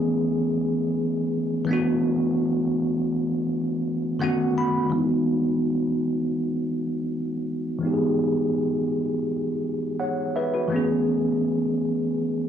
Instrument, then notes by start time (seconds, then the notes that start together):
tine electric piano
Already playing: E3 A3 B3 C#4 G#4
1.65 E3 A3
1.69 B3 D4
1.73 F#4
4.19 D#3 A3 B3 C#4 F#5
4.24 F#4
4.58 B5
4.90 E3 G#3
4.94 B3 D#4
4.98 E4
5.05 F#4
7.79 E3 G#3
7.83 B3 D#4
7.87 G4
7.93 G#4
10.00 C#5 F#5
10.36 B4 E5
10.54 F#4 B4
10.68 E3 A3
10.72 B3 C#4
10.76 G#4